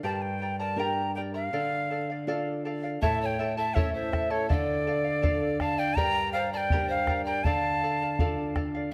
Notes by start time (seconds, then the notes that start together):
0.03 G2 G4 A#4 D5 G5 A5 A#5
0.15 A5
0.22 G5
0.42 A#4 D5 G5 A#5
0.59 A#4 D5 A5 A#5
0.76 D4 G4 A#4 D5 G5 A#5
1.15 A#4 D5 G5 A#5
1.34 A#4 D5 F5 A#5
1.53 D3 A4 D5 F5
1.90 A4 D5 F5
2.10 D5 F5
2.27 D4 F4 A4 D5 F5
2.65 A4 D5 F5
2.83 D5 F5
3.02 A2 E4 A4 C#5 E5 A5, bombo low
3.22 C#5 A5
3.26 G5
3.39 E4 A4 E5 A5
3.57 E4 A4 E5 A5
3.74 C#4 E4 A4 C#5 E5 A5, bombo low
3.93 C5 E5
4.12 E4 A4 E5 A5, bombo rim, bombo low
4.30 E4 A4 C#5 A5
4.49 D3 A4 D5 E5 F5, bombo low
4.54 D5
4.87 A4 D5 F5
5.04 D5 F5
5.22 D4 F4 A4 D5 F5, bombo low
5.60 A4 D5 F5 A5, bombo rim, bombo low
5.77 D5 F5 G5
5.96 G2 G4 A#4 D5 G5 A#5, bombo low
6.33 A#4 C5 D5 F5 G5 A#5
6.53 A#4 D5 A5 A#5
6.57 G5
6.70 D4 G4 A#4 D5 G5 A#5, bombo low
6.87 C5 F5
7.07 A#4 D5 G5 A#5, bombo rim, bombo low
7.24 D5 G5 A#5
7.29 A#4
7.44 D3 A4 D5 F5 A5, bombo low
7.83 A4 D5 F5
8.02 D5 F5
8.19 D4 F4 A4 D5 F5, bombo low
8.55 A4 D5 F5, bombo rim, bombo low
8.75 D5 F5